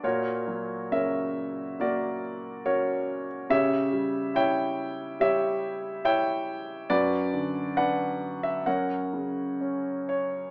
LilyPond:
<<
  \new Staff \with { instrumentName = "Grand piano" } { \time 4/4 \key fis \phrygian \tempo 4 = 69 << { cis''4 e''4 d''4 cis''8. r16 | e''4 g''4 e''4 g''4 | d''4 fis''8. e''16 fis''4. cis''8 | } \\ { <fis' ais'>4 <ais' cis''>4 <fis' ais'>4 <fis' ais'>4 | <g' cis''>4 <cis'' e''>4 <g' cis''>4 <cis'' e''>4 | <fis' b'>4 <b' d''>4 <ais' cis''>2 | } >> }
  \new Staff \with { instrumentName = "Grand piano" } { \clef bass \time 4/4 \key fis \phrygian ais,8 fis8 cis4 ais4 cis'4 | cis8 g8 e'4 g4 e'4 | fis,8 d8 d'4 fis,8 cis8 cis'4 | }
>>